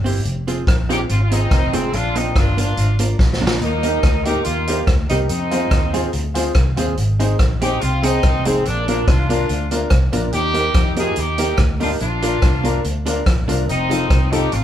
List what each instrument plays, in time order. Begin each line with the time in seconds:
Already playing: fingered electric bass G1
0.04 hollow-body jazz guitar C4 E4 G4 C5, open hi-hat
0.25 fingered electric bass F1, closed hi-hat
0.47 hollow-body jazz guitar C4 F4 G#4 C5, closed hi-hat
0.67 fingered electric bass A#1, muted hollow-body jazz guitar stroke, kick, cross-stick, closed hi-hat
0.89 hollow-body jazz guitar C4 F4 G#4 C5, horn section D#4 G4, closed hi-hat
1.09 fingered electric bass G#1, horn section C4 F4, closed hi-hat
1.21 horn section F4
1.31 horn section C4 D#4, hollow-body jazz guitar C4 F4 G#4 C5, closed hi-hat
1.51 fingered electric bass F1, kick, cross-stick, closed hi-hat
1.73 fingered electric bass F1, horn section G#3 C4, hollow-body jazz guitar C4 F4 G#4 C5, closed hi-hat
1.93 fingered electric bass A#1, horn section D4 F4, closed hi-hat
2.15 hollow-body jazz guitar A#3 D4 F4 A#4, horn section C4 D#4, closed hi-hat
2.36 fingered electric bass G1, horn section D4 F4, kick, cross-stick, closed hi-hat
2.57 hollow-body jazz guitar A#3 D4 F4 A#4, horn section D4 F4, closed hi-hat
2.77 fingered electric bass G#1, closed hi-hat
2.99 hollow-body jazz guitar A#3 D4 F4 A#4, closed hi-hat
3.19 fingered electric bass A#1, kick, snare
3.33 snare
3.41 fingered electric bass A#1, hollow-body jazz guitar A#3 D4 F4 A#4
3.47 snare
3.61 fingered electric bass D#2, horn section A#3 D#4, closed hi-hat
3.83 hollow-body jazz guitar A#3 D#4 G4 A#4, upright piano D#4 G4 A#4, closed hi-hat
4.03 fingered electric bass D2, muted hollow-body jazz guitar stroke, kick, cross-stick, closed hi-hat
4.24 hollow-body jazz guitar A#3 D#4 G4 A#4, upright piano D#4 G4 A#4, horn section D#4 G4, closed hi-hat
4.43 fingered electric bass D#2, horn section A#3 F4, closed hi-hat
4.67 hollow-body jazz guitar A#3 D#4 G4 A#4, upright piano D#4 G4 A#4, closed hi-hat
4.87 fingered electric bass D2, kick, cross-stick, closed hi-hat
5.09 fingered electric bass C2, hollow-body jazz guitar A#3 D#4 G4 A#4, horn section C4 D#4, upright piano D#4 G4 A#4, closed hi-hat
5.28 fingered electric bass F2, horn section C4 D#4, closed hi-hat
5.51 hollow-body jazz guitar G#3 C4 F4 G#4, upright piano F4 G#4 C5, closed hi-hat
5.71 fingered electric bass D#2, kick, cross-stick, closed hi-hat
5.93 hollow-body jazz guitar G#3 C4 F4 G#4, upright piano F4 G#4 C5, closed hi-hat
6.13 fingered electric bass D2, closed hi-hat
6.34 hollow-body jazz guitar G#3 C4 F4 G#4, upright piano F4 G#4 C5, closed hi-hat
6.55 fingered electric bass C2, kick, cross-stick, closed hi-hat
6.76 fingered electric bass D#2, hollow-body jazz guitar G#3 C4 F4 G#4, upright piano F4 G#4 C5, closed hi-hat
6.97 fingered electric bass G#1, closed hi-hat
7.20 hollow-body jazz guitar G#3 C4 D#4 G#4, upright piano D#4 G#4 C5, closed hi-hat
7.39 fingered electric bass A#1, muted hollow-body jazz guitar stroke, kick, cross-stick, closed hi-hat
7.61 hollow-body jazz guitar G#3 C4 D#4 G#4, upright piano D#4 G#4 C5, horn section D#4 G4, closed hi-hat
7.81 fingered electric bass C2, horn section C4 F4, closed hi-hat
8.03 hollow-body jazz guitar G#3 C4 D#4 G#4, horn section C4 D#4, upright piano D#4 G#4 C5, closed hi-hat
8.23 fingered electric bass C2, kick, cross-stick, closed hi-hat
8.45 fingered electric bass F1, horn section G#3 C4, hollow-body jazz guitar G#3 C4 D#4 G#4, upright piano D#4 G#4 C5, closed hi-hat
8.65 fingered electric bass A#1, horn section A#3 D4, closed hi-hat
8.88 hollow-body jazz guitar A#3 D4 F4 A#4, horn section A#3 D4, upright piano D4 F4 A#4, closed hi-hat
9.08 fingered electric bass C2, horn section D4 F4, muted hollow-body jazz guitar stroke, kick, cross-stick, closed hi-hat
9.29 hollow-body jazz guitar A#3 D4 F4 A#4, upright piano D4 F4 A#4, horn section D4 F4, closed hi-hat
9.49 fingered electric bass D2, closed hi-hat
9.71 hollow-body jazz guitar A#3 D4 F4 A#4, upright piano D4 F4 A#4, closed hi-hat
9.90 fingered electric bass C2, muted hollow-body jazz guitar stroke, kick, cross-stick, closed hi-hat
10.13 fingered electric bass A#1, hollow-body jazz guitar A#3 D4 F4 A#4, upright piano D4 F4 A#4, closed hi-hat
10.33 fingered electric bass D#2, horn section D#4 G4, closed hi-hat
10.54 hollow-body jazz guitar A#3 D#4 G4 A#4, upright piano D#4 G4 A#4, closed hi-hat
10.74 fingered electric bass F2, muted hollow-body jazz guitar stroke, kick, cross-stick, closed hi-hat
10.96 hollow-body jazz guitar A#3 D#4 G4 A#4, upright piano D#4 G4 A#4, horn section F4 G#4, closed hi-hat
11.16 fingered electric bass D#2, horn section D#4 G4, closed hi-hat
11.38 hollow-body jazz guitar A#3 D#4 G4 A#4, upright piano D#4 G4 A#4, closed hi-hat
11.58 fingered electric bass D2, kick, cross-stick, closed hi-hat
11.80 hollow-body jazz guitar A#3 D#4 G4 A#4, horn section D4 F4, upright piano D#4 G4 A#4, open hi-hat
12.00 fingered electric bass A#1, horn section D4 F4, closed hi-hat
12.22 hollow-body jazz guitar A#3 D4 F4 A#4, upright piano D4 F4 A#4, closed hi-hat
12.42 fingered electric bass C2, muted hollow-body jazz guitar stroke, kick, cross-stick, closed hi-hat
12.63 hollow-body jazz guitar A#3 D4 F4 A#4, upright piano D4 F4 A#4, closed hi-hat
12.84 fingered electric bass D2, closed hi-hat
13.06 hollow-body jazz guitar A#3 D4 F4 A#4, upright piano D4 F4 A#4, closed hi-hat
13.26 fingered electric bass A#1, kick, cross-stick, closed hi-hat
13.48 fingered electric bass C2, hollow-body jazz guitar A#3 D4 F4 A#4, upright piano D4 F4 A#4, closed hi-hat
13.69 fingered electric bass F1, horn section C4 D#4, closed hi-hat
13.89 hollow-body jazz guitar F3 C4 D#4 A4, upright piano D#4 F4 A4, closed hi-hat
14.10 fingered electric bass C2, muted hollow-body jazz guitar stroke, kick, cross-stick, closed hi-hat
14.31 hollow-body jazz guitar F3 C4 D#4 A4, upright piano D#4 F4 A4, horn section D#4 G4, closed hi-hat
14.52 fingered electric bass A1, horn section C4 F4, closed hi-hat